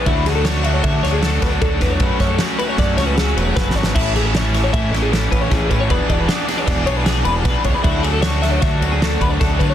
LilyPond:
<<
  \new Staff \with { instrumentName = "Clean electric guitar" } { \time 5/4 \key d \lydian \tempo 4 = 154 e'8 gis'16 a'16 cis''8 e''16 cis''16 e''8 cis''16 gis'16 a'8 b'16 cis''16 a'8 b'16 cis''16 | b'8 cis''16 a'16 cis''8 b'16 cis''16 d''8 cis''16 b'16 gis'8 b'16 gis'16 b'8 cis''16 b'16 | e'8 gis'16 a'16 cis''8 e''16 cis''16 e''8 cis''16 gis'16 a'8 b'16 cis''16 gis'8 b'16 cis''16 | b'8 d''16 b'16 d''8 b'16 cis''16 d''8 cis''16 b'16 gis'8 b'16 gis'16 b'8 cis''16 b'16 |
e'8 gis'16 a'16 cis''8 e''16 cis''16 e''8 cis''16 gis'16 a'8 b'16 cis''16 a'8 b'16 cis''16 | }
  \new Staff \with { instrumentName = "Overdriven electric guitar" } { \time 5/4 \key d \lydian <d fis a d' fis'>8 <a d' fis'>8 <fis a d' fis'>8 <d fis a d' fis'>8 <fis a d' fis'>8 <a d' fis'>8 <d fis a d' fis'>8 <a d' fis'>8 <d fis a d' fis'>8 <a d' fis'>8 | <fis a cis' fis'>8 <a cis' fis'>8 <fis a cis' fis'>8 <fis a cis' fis'>8 <fis a cis' fis'>8 <a cis' fis'>8 <fis a cis' fis'>8 <a cis' fis'>8 <fis a cis' fis'>8 <a cis' fis'>8 | <a, e a cis' e'>8 <a cis' e'>8 <e a cis' e'>8 <a, e a cis' e'>8 <e a cis' e'>8 <a cis' e'>8 <a, e a cis' e'>8 <a cis' e'>8 <a, e a cis' e'>8 <a cis' e'>8 | <e b d' gis'>8 <b d' gis'>8 <e b d' gis'>8 <e b d' gis'>8 <e b d' gis'>8 <b d' gis'>8 <e b d' gis'>8 <b d' gis'>8 <e b d' gis'>8 <b d' gis'>8 |
<d fis a d' fis'>8 <a d' fis'>8 <fis a d' fis'>8 <d fis a d' fis'>8 <fis a d' fis'>8 <a d' fis'>8 <d fis a d' fis'>8 <a d' fis'>8 <d fis a d' fis'>8 <a d' fis'>8 | }
  \new Staff \with { instrumentName = "Fingered electric bass" } { \clef bass \time 5/4 \key d \lydian d,2 d8 d,4 d,8 d,8 e,8 | fis,16 r16 fis,8 r4 fis,8 cis,4 e,,8 fis,,8 gis,,8 | a,,2 a,8 a,,4 a,,8 a,,8 a,8 | e,,16 r16 e,,8 r4 e,,8 b,,4 e,,8 b,,16 r16 cis,16 r16 |
d,2 d8 d,4 d,8 d,8 d8 | }
  \new DrumStaff \with { instrumentName = "Drums" } \drummode { \time 5/4 <bd cymr>8 <cymr sn>8 <cymr sn>8 cymr8 <bd cymr>8 <cymr sn>8 <cymr sn>8 <bd cymr sn>8 <bd cymr>8 <bd cymr sn>8 | <bd cymr>8 <bd cymr sn>8 <cymr sn>8 cymr8 <bd cymr sn>8 <cymr sn>8 <cymr sn>8 cymr8 \tuplet 3/2 { <bd sn>8 sn8 sn8 } | <cymc bd>8 <cymr sn>8 <cymr sn>8 <cymr sn>8 <bd cymr>8 <cymr sn>8 <cymr sn>8 <bd cymr>8 <bd cymr sn>8 <bd cymr>8 | <bd cymr>8 <bd cymr>8 <cymr sn>8 <cymr sn>8 <bd cymr sn>8 cymr8 <cymr sn>8 cymr8 <bd cymr sn>8 <bd cymr>8 |
<bd cymr>8 cymr8 <cymr sn>8 <cymr sn>8 <bd cymr sn>8 cymr8 <cymr sn>8 <bd cymr>8 <bd cymr sn>8 <bd cymr>8 | }
>>